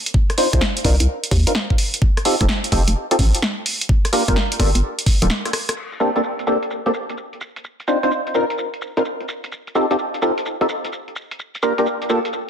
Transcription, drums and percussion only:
0.06 closed hi-hat medium
0.14 kick loud
0.30 cross-stick medium
0.30 closed hi-hat soft
0.38 open hi-hat loud
0.53 kick loud
0.53 cross-stick soft
0.53 closed hi-hat medium
0.61 snare loud
0.77 closed hi-hat medium
0.85 kick medium
0.85 open hi-hat loud
1.00 closed hi-hat medium
1.24 closed hi-hat medium
1.31 kick loud
1.31 open hi-hat loud
1.47 closed hi-hat medium
1.55 snare loud
1.70 kick medium
1.78 open hi-hat loud
1.94 closed hi-hat medium
2.02 kick loud
2.17 cross-stick medium
2.17 closed hi-hat soft
2.25 open hi-hat loud
2.41 kick loud
2.41 cross-stick medium
2.41 closed hi-hat medium
2.49 snare loud
2.64 closed hi-hat medium
2.72 kick medium
2.72 open hi-hat loud
2.88 closed hi-hat medium
3.11 closed hi-hat medium
3.19 kick loud
3.19 open hi-hat loud
3.35 closed hi-hat medium
3.42 snare loud
3.66 open hi-hat loud
3.81 closed hi-hat medium
3.89 kick loud
4.05 cross-stick medium
4.05 closed hi-hat soft
4.13 open hi-hat loud
4.28 kick loud
4.28 cross-stick medium
4.28 closed hi-hat medium
4.36 snare loud
4.52 closed hi-hat medium
4.60 kick medium
4.60 open hi-hat loud
4.75 closed hi-hat medium
4.99 closed hi-hat medium
5.06 kick loud
5.06 open hi-hat loud
5.22 closed hi-hat medium
5.30 snare loud
5.45 cross-stick medium
5.45 closed hi-hat soft
5.53 cross-stick medium
5.53 open hi-hat loud
5.69 cross-stick medium
5.69 closed hi-hat medium
5.77 crash medium
5.77 shaker soft
5.92 closed hi-hat soft
5.92 shaker soft
6.00 shaker medium
6.16 closed hi-hat medium
6.16 shaker soft
6.24 shaker soft
6.39 closed hi-hat soft
6.39 shaker soft
6.47 shaker medium
6.63 closed hi-hat medium
6.63 shaker soft
6.70 shaker soft
6.86 closed hi-hat soft
6.94 shaker medium
7.10 closed hi-hat medium
7.10 shaker soft
7.17 shaker soft
7.33 closed hi-hat soft
7.41 shaker medium
7.56 closed hi-hat medium
7.56 shaker soft
7.64 shaker soft
7.80 closed hi-hat soft
7.80 shaker soft
7.88 shaker medium
8.03 closed hi-hat medium
8.03 shaker soft
8.11 shaker soft
8.27 closed hi-hat soft
8.27 shaker soft
8.35 shaker medium
8.50 closed hi-hat medium
8.50 shaker soft
8.58 shaker soft
8.74 closed hi-hat soft
8.82 shaker medium
8.97 closed hi-hat medium
8.97 shaker soft
9.05 shaker soft
9.21 closed hi-hat soft
9.28 shaker medium
9.44 closed hi-hat medium
9.44 shaker soft
9.52 shaker soft
9.67 closed hi-hat soft
9.67 shaker soft
9.75 shaker medium
9.91 closed hi-hat medium
9.91 shaker soft
9.99 shaker soft
10.14 closed hi-hat soft
10.14 shaker soft
10.22 shaker medium
10.38 closed hi-hat medium
10.38 shaker soft
10.46 shaker soft
10.61 closed hi-hat soft
10.69 shaker medium
10.85 closed hi-hat medium
10.85 shaker soft
10.92 shaker soft
11.08 closed hi-hat soft
11.16 shaker medium
11.31 closed hi-hat medium
11.31 shaker soft
11.39 shaker soft
11.55 closed hi-hat soft
11.55 shaker soft
11.63 shaker medium
11.78 closed hi-hat medium
11.78 shaker soft
11.86 shaker soft
12.02 closed hi-hat soft
12.02 shaker soft
12.10 shaker medium
12.25 closed hi-hat medium
12.25 shaker soft
12.33 shaker soft

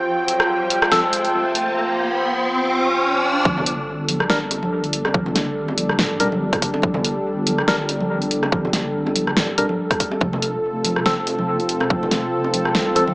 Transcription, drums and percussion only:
0.28 closed hi-hat medium
0.40 cross-stick medium
0.70 closed hi-hat medium
0.82 cross-stick medium
0.92 snare loud
1.13 closed hi-hat medium
1.25 closed hi-hat soft
1.55 closed hi-hat medium
3.45 kick loud
3.45 high conga medium
3.57 low conga medium
3.66 closed hi-hat medium
4.09 closed hi-hat medium
4.09 high conga medium
4.20 cross-stick medium
4.30 snare loud
4.51 closed hi-hat medium
4.51 high bongo medium
4.63 high conga loud
4.84 closed hi-hat soft
4.93 closed hi-hat medium
5.05 cross-stick medium
5.05 high bongo medium
5.14 kick loud
5.14 high conga loud
5.26 low conga medium
5.35 snare medium
5.35 closed hi-hat medium
5.35 high bongo medium
5.68 high bongo medium
5.78 closed hi-hat medium
5.78 high conga medium
5.89 cross-stick medium
5.99 snare loud
6.20 closed hi-hat medium
6.20 high bongo medium
6.32 high conga loud
6.53 kick loud
6.53 cross-stick medium
6.53 closed hi-hat soft
6.62 kick medium
6.62 closed hi-hat medium
6.74 high bongo medium
6.82 kick loud
6.82 high conga loud
6.94 low conga medium
7.05 closed hi-hat medium
7.47 closed hi-hat medium
7.47 high conga medium
7.58 cross-stick medium
7.68 snare loud
7.89 closed hi-hat medium
7.89 high bongo medium
8.01 high conga medium
8.22 closed hi-hat soft
8.31 closed hi-hat medium
8.43 cross-stick medium
8.43 high bongo medium
8.52 kick loud
8.52 high conga medium
8.65 low conga medium
8.73 snare medium
8.73 closed hi-hat medium
8.73 high bongo medium
9.07 high bongo medium
9.16 closed hi-hat medium
9.16 high conga medium
9.27 cross-stick medium
9.37 snare loud
9.58 closed hi-hat medium
9.58 high bongo medium
9.69 high conga medium
9.91 kick loud
9.91 cross-stick medium
9.91 closed hi-hat soft
10.00 kick medium
10.00 closed hi-hat medium
10.11 high bongo medium
10.21 kick loud
10.21 high conga loud
10.33 low conga medium
10.42 closed hi-hat medium
10.85 closed hi-hat medium
10.85 high conga medium
10.96 cross-stick soft
11.06 snare loud
11.27 closed hi-hat medium
11.27 high bongo soft
11.39 high conga loud
11.60 closed hi-hat soft
11.69 closed hi-hat medium
11.80 cross-stick medium
11.80 high bongo medium
11.90 kick loud
11.90 high conga medium
12.03 low conga medium
12.11 snare medium
12.11 closed hi-hat medium
12.11 high bongo medium
12.44 high bongo medium
12.54 closed hi-hat medium
12.54 high conga medium
12.65 cross-stick medium
12.75 snare loud
12.95 closed hi-hat medium
12.95 high bongo soft
13.08 high conga medium

